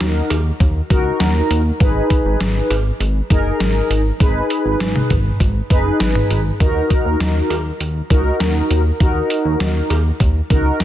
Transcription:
Already playing: D#4 F#4 A#4
0.00 D#2, snare, closed hi-hat
0.30 D#2, closed hi-hat, cowbell
0.60 D#2, kick, closed hi-hat
0.90 C#2 D#4 F#4 A#4, kick, closed hi-hat
1.20 D#2, snare, closed hi-hat
1.50 D#2, closed hi-hat
1.80 G#1 D#4 G#4 B4, kick, closed hi-hat
2.10 kick, closed hi-hat
2.25 G#1
2.40 G#1, snare, closed hi-hat
2.70 G#1, closed hi-hat, cowbell
3.00 G#1, closed hi-hat
3.30 F#1 D#4 G#4 A#4, kick, closed hi-hat
3.60 G#1, snare, closed hi-hat
3.90 G#1, closed hi-hat
4.20 G#1 D#4 G#4 B4, kick, closed hi-hat
4.50 closed hi-hat
4.65 G#1
4.80 G#1, snare, closed hi-hat
4.96 mid tom
5.10 G#1, kick, closed hi-hat, mid tom
5.40 G#1, kick, closed hi-hat
5.70 F#1 D#4 G#4 B4, kick, closed hi-hat
6.00 G#1, snare, closed hi-hat
6.15 mid tom
6.30 G#1, closed hi-hat
6.60 D#2 D#4 F#4 A#4, kick, closed hi-hat
6.90 kick, closed hi-hat
7.05 D#2
7.20 D#2, snare, closed hi-hat
7.50 D#2, closed hi-hat, cowbell
7.80 D#2, closed hi-hat
8.10 C#2 D#4 F#4 A#4, kick, closed hi-hat
8.40 D#2, snare, closed hi-hat
8.70 D#2, closed hi-hat
9.00 D#2 D#4 F#4 A#4, kick, closed hi-hat
9.30 closed hi-hat
9.45 D#2
9.60 D#2, snare, closed hi-hat
9.90 D#2, closed hi-hat, cowbell
10.20 D#2, kick, closed hi-hat
10.50 C#2 D#4 F#4 A#4, kick, closed hi-hat
10.80 D#2, snare, closed hi-hat

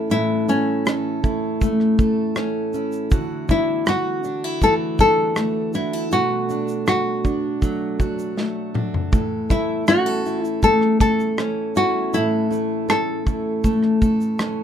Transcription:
Already playing: A3 C#4 E4 A4
0.10 A2 E3 E4 A4, shaker
0.48 A3 C#4 E4, shaker
0.86 C#4 A4, cross-stick, shaker
1.23 A3 E4, kick, shaker
1.61 E3 A3, kick, shaker
1.80 cross-stick
1.98 A3 A4, kick, shaker
2.36 E3 C#4, cross-stick, shaker
2.73 C#4 E4, shaker
2.92 shaker
3.11 D3 E3 F#4, kick, shaker
3.49 D4 E4, kick, shaker
3.86 F#4, cross-stick, shaker
4.24 D4, shaker
4.44 E4
4.62 E3 A3 A4, kick, shaker
4.99 D4 F#4 A4, kick, shaker
5.36 A3, cross-stick, shaker
5.74 D4 E4 F#4, shaker
5.93 E4
6.11 B2 A3 F#4, shaker
6.49 D4, shaker
6.68 shaker
6.87 F#4, cross-stick, shaker
7.25 D4, kick, shaker
7.62 F#3 A3, kick, shaker
7.99 D4 F#4, kick, shaker
8.19 shaker
8.37 A3, snare
8.74 D4 F#4, mid tom
8.94 floor tom
9.12 A2 E3 A4, kick, shaker
9.49 A3 E4, kick, shaker
9.87 C#4 F#4 G4, cross-stick, shaker
10.06 A4
10.25 A3 E4, shaker
10.45 E4, shaker
10.62 E3 A3 A4, kick, shaker
10.81 cross-stick
11.00 A3 A4, kick, shaker
11.20 shaker
11.38 E3 C#4, cross-stick, shaker
11.75 C#4 E4 F#4, shaker
12.13 A2 E3 E4 A4, shaker
12.50 A3 E4, shaker
12.89 C#4 A4, cross-stick, shaker
13.27 A3 E4, kick, shaker
13.64 E3 A3, kick, shaker
13.83 cross-stick
14.02 A3 A4, kick, shaker
14.21 shaker
14.39 E3 C#4, cross-stick, shaker

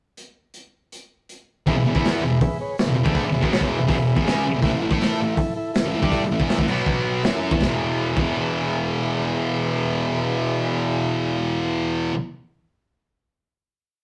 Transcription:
0.17 closed hi-hat
0.54 closed hi-hat
0.92 closed hi-hat
1.29 closed hi-hat
1.67 E2 B2 G#4 B4 E5, kick, open hi-hat
1.77 E2 B2
1.85 E2 B2 G#4 B4 E5
1.95 E3 B3 E4, kick
2.03 G#4 B4 E5, snare, open hi-hat
2.22 E2 B2 G#4 B4 E5
2.41 G#4 B4 E5, kick, open hi-hat
2.60 G#4 B4 C#5
2.78 G#4 B4 E5, snare, open hi-hat
2.88 E2 B2
2.95 E2 B2 G#4 B4 E5
3.04 D3 A3 D4, kick
3.14 G#4 B4 E5, kick, open hi-hat
3.24 muted distorted electric guitar stroke
3.32 E2 B2 G#4 B4 E5
3.41 B2 F#3 B3, kick
3.51 G#4 B4 C#5, snare, open hi-hat
3.59 E2 B2 E3, kick
3.67 G#4 B4 E5
3.79 E2 B2
3.86 B2 F#3 G#4 B4 E5, kick, open hi-hat
3.98 E2 B2
4.06 G#4 B4 E5
4.16 E2 B2, kick
4.25 C#3 G#3 C#4 G#4 B4 E5, snare, open hi-hat
4.43 G#4 B4 E5, muted distorted electric guitar stroke
4.54 E2 B2
4.62 A2 E3 E4 A4 E5, kick, open hi-hat
4.73 A2 E3
4.79 A2 E3 E4 A4 F#5
4.91 A3 E4 A4, kick
4.98 E4 A4 E5, open hi-hat
5.02 snare
5.16 A2 E4 A4 E5
5.20 E3
5.36 E4 A4 E5, kick, open hi-hat
5.56 E4 A4 E5
5.73 E4 A4 E5, snare, open hi-hat
5.85 A2 E3
5.92 A2 E3 E4 A4 E5
6.02 G3 D4 G4, kick
6.11 E4 A4 E5, kick, open hi-hat
6.23 muted distorted electric guitar stroke
6.28 A2 E3 E4 A4 E5
6.40 E3 B3 E4, kick
6.48 E4 A4 E5, snare, open hi-hat
6.58 A2 E3, kick
6.66 B2 F#3 F#4 B4 F#5, crash
6.71 B3
6.86 kick
7.04 F#4 B4 F#5
7.23 F#3 C#4 E4 F#4 A4 E5, snare, open hi-hat
7.41 E4 A4 E5
7.51 E3 B3, kick
7.60 E2 G#4 B4 E5, kick, snare
7.65 B2 E3
8.17 E2 B2, kick, crash
8.21 E3

